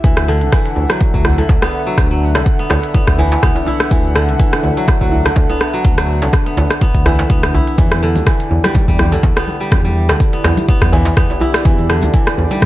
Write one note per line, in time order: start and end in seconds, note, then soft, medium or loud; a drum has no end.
0.00 7.74 E5 medium
0.00 closed hi-hat medium
0.04 0.43 D2 medium
0.04 0.33 E3 medium
0.04 7.74 D4 medium
0.04 7.74 A4 medium
0.04 7.74 F#5 medium
0.04 kick loud
0.17 cross-stick medium
0.28 1.37 D3 loud
0.41 0.48 C2 medium
0.41 closed hi-hat soft
0.52 1.42 E3 medium
0.52 kick loud
0.52 cross-stick medium
0.52 closed hi-hat medium
0.66 closed hi-hat soft
0.76 0.85 D2 loud
0.76 djembe tone medium
0.90 1.13 F#3 medium
0.90 cross-stick medium
0.90 closed hi-hat soft
1.01 kick loud
1.01 closed hi-hat medium
1.14 1.43 D2 medium
1.14 1.42 F#3 medium
1.14 kick medium
1.25 cross-stick medium
1.25 djembe bass medium
1.38 2.34 D3 medium
1.38 closed hi-hat soft
1.38 djembe tone medium
1.49 1.57 D2 medium
1.49 kick loud
1.49 closed hi-hat medium
1.49 djembe slap medium
1.62 2.59 B3 medium
1.62 cross-stick medium
1.62 closed hi-hat soft
1.62 djembe tone medium
1.87 2.10 F#3 medium
1.98 2.36 D2 loud
1.98 kick loud
1.98 cross-stick medium
1.98 closed hi-hat medium
2.11 2.39 F#3 medium
2.35 2.42 C2 medium
2.35 4.14 D3 medium
2.35 cross-stick medium
2.35 closed hi-hat soft
2.35 djembe slap medium
2.46 kick loud
2.46 closed hi-hat medium
2.59 2.94 B3 medium
2.59 closed hi-hat soft
2.70 2.78 D2 loud
2.70 cross-stick medium
2.70 djembe slap medium
2.70 djembe tone medium
2.83 closed hi-hat soft
2.94 3.43 B3 medium
2.94 kick loud
2.94 closed hi-hat medium
2.94 djembe tone medium
3.07 3.36 D2 medium
3.07 kick medium
3.07 cross-stick medium
3.18 3.90 E3 loud
3.18 djembe tone medium
3.18 djembe bass medium
3.32 closed hi-hat soft
3.32 djembe slap medium
3.43 3.51 D2 medium
3.43 5.29 B3 medium
3.43 kick loud
3.43 cross-stick medium
3.43 closed hi-hat medium
3.55 closed hi-hat soft
3.55 djembe tone medium
3.66 5.24 E4 medium
3.66 djembe tone medium
3.66 djembe bass medium
3.80 cross-stick medium
3.91 4.30 D2 loud
3.91 4.20 E3 medium
3.91 kick loud
3.91 closed hi-hat medium
4.15 5.24 D3 loud
4.15 cross-stick medium
4.28 4.35 C2 medium
4.28 closed hi-hat soft
4.40 5.29 E3 medium
4.40 kick loud
4.40 closed hi-hat medium
4.53 cross-stick medium
4.53 closed hi-hat soft
4.63 4.72 D2 loud
4.63 djembe tone medium
4.77 5.00 F#3 medium
4.77 closed hi-hat soft
4.88 kick loud
4.88 cross-stick medium
4.88 closed hi-hat medium
5.01 5.30 D2 medium
5.01 5.29 F#3 medium
5.01 kick medium
5.12 djembe bass medium
5.25 6.21 D3 medium
5.25 cross-stick medium
5.25 closed hi-hat soft
5.25 djembe tone medium
5.36 5.45 D2 medium
5.36 kick loud
5.36 closed hi-hat medium
5.36 djembe slap medium
5.49 6.46 B3 medium
5.49 closed hi-hat soft
5.49 djembe tone medium
5.61 cross-stick medium
5.74 5.96 F#3 medium
5.85 6.23 D2 loud
5.85 kick loud
5.85 closed hi-hat medium
5.98 6.26 F#3 medium
5.98 cross-stick medium
5.98 closed hi-hat soft
6.22 6.29 C2 medium
6.22 7.83 D3 medium
6.22 closed hi-hat soft
6.22 djembe slap medium
6.33 kick loud
6.33 cross-stick medium
6.33 closed hi-hat medium
6.46 6.81 B3 medium
6.46 closed hi-hat soft
6.57 6.65 D2 loud
6.57 djembe slap medium
6.57 djembe tone medium
6.71 cross-stick medium
6.71 closed hi-hat soft
6.81 7.30 B3 medium
6.81 kick loud
6.81 closed hi-hat medium
6.81 djembe tone medium
6.95 7.23 D2 medium
6.95 kick medium
6.95 closed hi-hat soft
7.06 7.77 E3 medium
7.06 cross-stick medium
7.06 djembe tone medium
7.06 djembe bass medium
7.19 closed hi-hat soft
7.19 djembe slap medium
7.30 7.59 D2 medium
7.30 9.17 B3 medium
7.30 kick loud
7.30 closed hi-hat medium
7.43 cross-stick medium
7.43 closed hi-hat soft
7.43 djembe tone medium
7.54 9.11 E4 medium
7.54 djembe tone medium
7.54 djembe bass medium
7.68 closed hi-hat soft
7.78 8.17 E2 loud
7.78 8.07 E3 medium
7.78 12.66 E4 medium
7.78 12.66 G4 medium
7.78 12.66 D5 medium
7.78 kick loud
7.78 closed hi-hat medium
7.78 low conga loud
7.78 shaker medium
7.91 cross-stick medium
7.91 muted conga medium
7.91 shaker soft
8.03 9.11 D3 loud
8.15 8.23 D2 medium
8.15 closed hi-hat soft
8.15 high conga medium
8.15 low conga medium
8.15 shaker medium
8.27 9.16 E3 medium
8.27 kick loud
8.27 cross-stick medium
8.27 closed hi-hat medium
8.27 muted conga soft
8.27 shaker medium
8.40 closed hi-hat soft
8.40 shaker soft
8.51 8.59 E2 loud
8.51 djembe tone medium
8.64 8.87 G3 medium
8.64 cross-stick medium
8.64 closed hi-hat soft
8.64 muted conga medium
8.64 high conga medium
8.64 shaker medium
8.75 kick loud
8.75 closed hi-hat medium
8.75 high conga loud
8.75 low conga medium
8.75 shaker medium
8.88 9.17 E2 medium
8.88 9.16 G3 medium
8.88 kick medium
8.88 shaker soft
8.98 cross-stick medium
8.98 muted conga soft
8.98 high conga medium
8.98 djembe bass medium
8.98 low conga medium
9.12 10.08 D3 medium
9.12 closed hi-hat soft
9.12 djembe tone medium
9.12 shaker medium
9.23 9.32 E2 medium
9.23 kick loud
9.23 closed hi-hat medium
9.23 djembe slap medium
9.23 shaker medium
9.36 10.33 B3 medium
9.36 cross-stick medium
9.36 closed hi-hat soft
9.36 djembe tone medium
9.36 shaker soft
9.48 muted conga medium
9.60 9.83 G3 medium
9.60 shaker medium
9.72 10.11 E2 loud
9.72 kick loud
9.72 cross-stick medium
9.72 closed hi-hat medium
9.72 low conga loud
9.72 shaker medium
9.84 10.13 G3 medium
9.84 muted conga medium
9.84 shaker soft
10.09 10.16 D2 medium
10.09 11.88 D3 medium
10.09 cross-stick loud
10.09 closed hi-hat soft
10.09 djembe slap medium
10.09 high conga medium
10.09 shaker medium
10.20 kick loud
10.20 closed hi-hat medium
10.20 muted conga soft
10.20 shaker medium
10.33 10.68 B3 medium
10.33 closed hi-hat soft
10.33 shaker soft
10.44 10.53 E2 loud
10.44 cross-stick medium
10.44 djembe slap medium
10.44 djembe tone medium
10.44 high conga medium
10.57 closed hi-hat soft
10.57 muted conga medium
10.57 high conga medium
10.57 shaker medium
10.68 11.16 B3 medium
10.68 kick loud
10.68 closed hi-hat medium
10.68 djembe tone medium
10.68 shaker medium
10.81 11.10 E2 medium
10.81 kick medium
10.81 cross-stick medium
10.81 high conga medium
10.81 shaker soft
10.93 11.64 E3 loud
10.93 muted conga soft
10.93 djembe tone loud
10.93 djembe bass medium
10.93 low conga medium
11.05 closed hi-hat soft
11.05 djembe slap loud
11.05 shaker medium
11.17 11.25 E2 medium
11.17 12.66 B3 medium
11.17 kick loud
11.17 cross-stick medium
11.17 closed hi-hat medium
11.17 shaker medium
11.30 closed hi-hat soft
11.30 djembe tone loud
11.30 shaker soft
11.40 12.66 E4 medium
11.40 muted conga soft
11.40 djembe tone medium
11.40 djembe bass loud
11.54 cross-stick loud
11.54 shaker medium
11.65 12.04 E2 loud
11.65 11.95 E3 medium
11.65 kick loud
11.65 closed hi-hat medium
11.65 low conga loud
11.65 shaker medium
11.78 muted conga soft
11.78 shaker soft
11.89 12.66 D3 loud
11.89 cross-stick medium
12.02 12.09 D2 medium
12.02 closed hi-hat soft
12.02 high conga medium
12.02 low conga medium
12.02 shaker medium
12.13 12.66 E3 medium
12.13 kick loud
12.13 closed hi-hat medium
12.13 shaker medium
12.26 cross-stick medium
12.26 closed hi-hat soft
12.26 shaker soft
12.38 12.46 E2 loud
12.38 djembe tone medium
12.51 12.66 G3 medium
12.51 closed hi-hat soft
12.51 muted conga medium
12.51 high conga medium
12.51 shaker medium
12.62 kick loud
12.62 cross-stick medium
12.62 closed hi-hat medium
12.62 high conga loud
12.62 low conga medium
12.62 shaker medium